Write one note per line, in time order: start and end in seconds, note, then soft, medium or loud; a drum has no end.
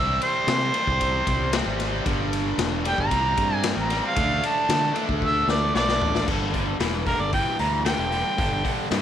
0.00 0.18 C2 medium
0.00 0.72 C3 medium
0.00 0.74 G3 medium
0.00 0.72 C4 loud
0.00 0.21 E5 medium
0.22 1.76 C5 loud
0.22 ride medium
0.47 0.70 C3 medium
0.47 snare loud
0.47 ride medium
0.73 1.51 C3 medium
0.73 1.51 G3 medium
0.73 1.51 C4 medium
0.73 ride medium
0.87 1.22 C2 medium
0.87 kick medium
1.01 kick medium
1.01 ride medium
1.27 1.61 C2 medium
1.27 kick medium
1.27 ride medium
1.53 2.04 C3 medium
1.53 2.04 G3 medium
1.53 2.05 C4 medium
1.53 snare loud
1.53 ride loud
1.66 2.00 G#1 loud
1.80 snare soft
1.80 ride medium
2.05 2.52 G1 medium
2.05 2.83 G2 medium
2.05 2.83 D3 loud
2.05 2.83 G3 loud
2.05 kick loud
2.05 ride medium
2.33 ride medium
2.58 2.92 E1 medium
2.58 snare loud
2.58 ride medium
2.84 3.10 G2 medium
2.84 3.09 D3 medium
2.84 3.09 G3 loud
2.84 2.98 G5 loud
2.84 ride medium
2.98 3.10 G1 loud
2.98 3.54 A#5 loud
2.98 kick medium
3.10 3.34 C2 loud
3.10 3.88 C3 medium
3.10 3.88 G3 medium
3.10 3.88 C4 medium
3.10 kick medium
3.10 ride medium
3.37 3.72 G2 medium
3.37 kick medium
3.37 ride medium
3.54 3.76 G#5 loud
3.63 snare loud
3.63 ride loud
3.77 4.00 A1 medium
3.81 4.04 A#5 medium
3.90 4.15 C3 medium
3.90 4.15 G3 medium
3.90 4.14 C4 medium
3.90 snare soft
3.90 ride medium
4.06 4.48 F5 medium
4.16 4.39 D2 medium
4.16 4.93 D3 medium
4.16 4.94 A3 medium
4.16 4.94 D4 loud
4.16 kick loud
4.16 ride medium
4.43 4.96 A5 loud
4.43 ride medium
4.69 4.92 D3 medium
4.69 snare loud
4.69 ride medium
4.95 5.73 D3 medium
4.95 5.73 A3 medium
4.95 5.72 D4 medium
4.95 ride medium
5.09 5.43 D2 medium
5.09 kick medium
5.22 5.51 E5 loud
5.22 kick medium
5.48 5.71 D2 medium
5.48 5.74 D5 medium
5.48 snare medium
5.74 5.98 B1 medium
5.74 6.25 D3 medium
5.74 6.26 A3 medium
5.74 6.26 D4 medium
5.74 6.26 D5 medium
5.74 snare medium
5.89 snare medium
6.01 6.25 A1 medium
6.01 floor tom medium
6.15 snare medium
6.27 6.74 G1 medium
6.27 6.50 G2 medium
6.27 6.51 D3 medium
6.27 kick medium
6.27 crash medium
6.52 6.76 G2 medium
6.52 6.77 D3 medium
6.52 kick medium
6.52 open hi-hat soft
6.79 7.14 E1 medium
6.79 7.03 G2 medium
6.79 7.03 E3 medium
6.79 snare loud
6.79 open hi-hat medium
7.06 7.29 G2 medium
7.06 7.30 D3 medium
7.06 7.22 A#4 medium
7.06 kick medium
7.06 open hi-hat medium
7.19 7.42 G1 medium
7.19 7.32 D5 medium
7.32 7.56 G2 medium
7.32 7.56 E3 medium
7.32 7.58 G5 medium
7.32 kick medium
7.32 open hi-hat medium
7.59 7.93 D2 medium
7.59 7.82 G2 medium
7.59 7.83 E3 medium
7.59 7.85 A#5 medium
7.59 open hi-hat medium
7.84 8.08 G2 medium
7.84 8.08 D3 medium
7.84 8.87 G5 medium
7.84 snare loud
7.84 open hi-hat medium
7.99 8.21 E1 medium
7.99 snare soft
8.10 8.35 G2 medium
8.10 8.35 D3 medium
8.10 open hi-hat medium
8.37 8.61 G1 medium
8.37 8.61 G2 medium
8.37 8.61 D3 medium
8.37 kick loud
8.37 open hi-hat medium
8.63 8.87 G2 medium
8.63 8.88 D3 medium
8.63 kick medium
8.63 open hi-hat medium
8.90 9.02 G2 medium
8.90 9.02 E3 medium
8.90 snare loud
8.90 open hi-hat medium